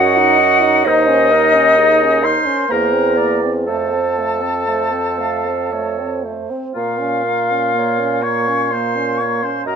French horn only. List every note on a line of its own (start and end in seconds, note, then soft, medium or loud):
0.00 0.19 F#4 medium
0.17 0.41 D#4 medium
0.39 0.64 F#4 medium
0.62 0.85 D#4 medium
0.85 1.09 D#4 medium
1.08 1.34 C#4 medium
1.32 1.55 D#4 medium
1.54 1.77 C#4 medium
1.78 2.04 D#4 medium
2.03 2.26 C#4 medium
2.24 2.47 D#4 medium
2.46 2.68 C#4 medium
2.69 2.94 A#3 medium
2.93 3.19 C4 medium
3.17 3.45 A#3 medium
3.43 3.67 C4 medium
3.68 3.94 A3 medium
3.93 4.20 C4 soft
4.19 4.44 A3 soft
4.42 4.67 C4 soft
4.68 4.93 A3 medium
4.92 5.20 C4 soft
5.19 5.48 A3 soft
5.46 5.72 C4 soft
5.73 6.01 A3 medium
5.99 6.26 C4 soft
6.25 6.52 A3 soft
6.50 6.75 C4 soft
6.75 7.01 A#3 medium
7.00 7.26 C#4 medium
7.24 7.53 A#3 soft
7.51 7.74 C#4 soft
7.75 8.02 A#3 medium
8.00 8.25 C#4 soft
8.23 8.50 A#3 soft
8.48 8.71 C#4 medium
8.73 8.97 A#3 medium
8.96 9.22 C#4 soft
9.21 9.45 A#3 medium
9.43 9.65 C#4 medium
9.67 9.76 F#4 medium